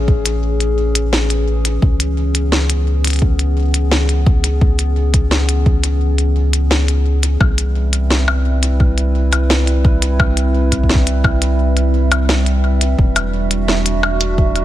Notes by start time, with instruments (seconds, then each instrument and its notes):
Already playing: analog synth bass A1, ambient pad E3 A3 C#4 G#4 C#5
0.08 kick
0.26 closed hi-hat
0.60 closed hi-hat
0.95 closed hi-hat
1.13 snare
1.30 closed hi-hat
1.65 closed hi-hat
1.82 analog synth bass C#2, kick
2.00 ambient pad B3, closed hi-hat
2.35 closed hi-hat
2.52 snare
2.70 closed hi-hat
3.04 closed hi-hat
3.07 closed hi-hat
3.10 closed hi-hat
3.13 closed hi-hat
3.16 closed hi-hat
3.19 kick, closed hi-hat
3.39 closed hi-hat
3.74 closed hi-hat
3.91 snare
4.09 closed hi-hat
4.26 kick
4.44 closed hi-hat
4.61 kick
4.79 closed hi-hat
5.14 kick, closed hi-hat
5.31 snare
5.49 closed hi-hat
5.66 kick
5.84 closed hi-hat
6.18 closed hi-hat
6.53 closed hi-hat
6.71 snare
6.88 closed hi-hat
7.23 closed hi-hat
7.40 analog synth bass C2, ambient pad G3, kick, percussion blips
7.48 ambient pad C4
7.57 ambient pad B4 E5, closed hi-hat
7.93 ambient pad E4, closed hi-hat
8.10 snare
8.28 percussion blips
8.63 closed hi-hat
8.80 kick
8.98 closed hi-hat
9.33 closed hi-hat, percussion blips
9.50 snare
9.67 closed hi-hat
9.85 kick
10.02 closed hi-hat
10.19 kick, percussion blips
10.37 closed hi-hat
10.72 kick, closed hi-hat
10.83 kick
10.89 snare
10.95 kick
11.07 closed hi-hat
11.24 kick, percussion blips
11.42 closed hi-hat
11.77 closed hi-hat
12.12 closed hi-hat, percussion blips
12.29 snare
12.46 closed hi-hat
12.81 closed hi-hat
12.99 analog synth bass E1, kick
13.08 ambient pad D4 F#4
13.16 closed hi-hat, percussion blips
13.51 closed hi-hat
13.68 snare
13.74 ambient pad A3
13.86 closed hi-hat
14.03 percussion blips
14.21 closed hi-hat
14.38 kick
14.56 closed hi-hat